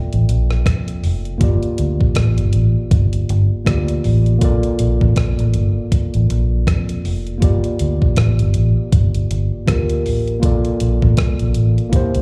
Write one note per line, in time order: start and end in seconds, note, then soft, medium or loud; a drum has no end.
0.00 1.35 A#3 medium
0.00 1.36 F4 medium
0.00 1.37 A4 medium
0.00 1.38 D5 medium
0.00 1.43 E5 soft
0.00 1.43 G5 medium
0.13 0.27 A1 medium
0.13 closed hi-hat soft
0.29 0.62 A#1 medium
0.29 closed hi-hat medium
0.51 cross-stick medium
0.66 1.00 F2 medium
0.66 kick loud
0.66 cross-stick loud
0.66 closed hi-hat medium
0.88 closed hi-hat medium
1.04 1.38 F1 medium
1.04 open hi-hat medium
1.25 closed hi-hat soft
1.38 1.61 G1 loud
1.38 3.61 A#3 medium
1.38 3.62 F4 medium
1.38 3.63 G4 medium
1.38 kick loud
1.38 closed hi-hat medium
1.44 3.64 D5 medium
1.63 closed hi-hat soft
1.78 1.99 D2 medium
1.78 closed hi-hat medium
2.01 2.15 A#1 medium
2.01 kick medium
2.15 2.36 A1 medium
2.15 kick loud
2.15 cross-stick loud
2.15 closed hi-hat medium
2.38 2.53 G1 medium
2.38 closed hi-hat medium
2.53 2.74 A1 medium
2.53 closed hi-hat medium
2.91 3.25 G1 medium
2.91 kick loud
2.91 closed hi-hat medium
3.13 closed hi-hat medium
3.29 3.49 G1 medium
3.29 closed hi-hat medium
3.65 4.00 D2 medium
3.65 4.37 A#3 medium
3.65 4.40 F4 soft
3.65 4.42 G4 soft
3.65 4.42 D5 medium
3.65 kick loud
3.65 cross-stick loud
3.65 closed hi-hat medium
3.88 closed hi-hat medium
4.04 4.38 A1 medium
4.04 open hi-hat medium
4.26 closed hi-hat soft
4.39 4.62 A#1 loud
4.39 7.37 A#3 medium
4.39 7.38 F4 medium
4.39 7.39 A4 medium
4.39 kick loud
4.39 closed hi-hat medium
4.45 7.40 D5 medium
4.63 closed hi-hat soft
4.79 4.99 A#1 medium
4.79 closed hi-hat medium
5.01 5.15 A1 medium
5.01 kick medium
5.16 5.37 A#1 medium
5.16 kick loud
5.16 cross-stick loud
5.16 closed hi-hat medium
5.39 5.53 A1 medium
5.39 closed hi-hat medium
5.54 5.75 G1 medium
5.54 closed hi-hat medium
5.92 kick loud
5.92 closed hi-hat medium
6.14 6.28 A1 medium
6.14 closed hi-hat medium
6.30 6.63 A#1 medium
6.30 closed hi-hat medium
6.67 7.01 F2 medium
6.67 kick loud
6.67 cross-stick loud
6.67 closed hi-hat medium
6.89 closed hi-hat medium
7.05 7.39 F1 medium
7.05 open hi-hat medium
7.27 closed hi-hat soft
7.38 9.61 A#3 medium
7.38 9.63 F4 medium
7.42 7.62 G1 loud
7.42 9.63 G4 medium
7.42 9.64 D5 medium
7.42 kick loud
7.42 closed hi-hat medium
7.64 closed hi-hat soft
7.79 8.00 D2 medium
7.79 closed hi-hat medium
8.02 8.16 A#1 medium
8.02 kick medium
8.16 8.37 A1 medium
8.16 kick loud
8.16 cross-stick loud
8.16 closed hi-hat medium
8.39 8.54 G1 medium
8.39 closed hi-hat medium
8.54 8.75 A1 medium
8.54 closed hi-hat medium
8.92 9.26 G1 medium
8.92 kick loud
8.92 closed hi-hat loud
9.15 closed hi-hat medium
9.31 9.50 G1 medium
9.31 closed hi-hat medium
9.66 10.06 D2 medium
9.66 10.38 A#3 soft
9.66 10.40 F4 soft
9.66 10.43 G4 soft
9.66 10.43 A#4 medium
9.66 kick loud
9.66 cross-stick loud
9.66 closed hi-hat medium
9.90 closed hi-hat medium
10.06 10.39 A1 medium
10.06 open hi-hat medium
10.28 closed hi-hat soft
10.40 10.63 A#1 loud
10.40 11.88 A#3 medium
10.40 11.89 F4 medium
10.40 kick loud
10.40 closed hi-hat medium
10.44 11.90 A4 medium
10.44 11.91 D5 medium
10.65 closed hi-hat soft
10.80 11.01 A#1 medium
10.80 closed hi-hat medium
11.02 11.16 A1 medium
11.02 kick medium
11.17 11.38 C2 medium
11.17 kick loud
11.17 cross-stick loud
11.17 closed hi-hat medium
11.39 11.54 A#1 medium
11.39 closed hi-hat soft
11.54 11.76 A1 medium
11.54 closed hi-hat medium
11.78 closed hi-hat soft
11.90 12.22 A#3 medium
11.90 12.22 E4 medium
11.90 kick loud
11.90 closed hi-hat medium
11.94 12.22 G4 medium
11.94 12.22 C5 medium
12.15 12.22 C2 medium
12.15 closed hi-hat medium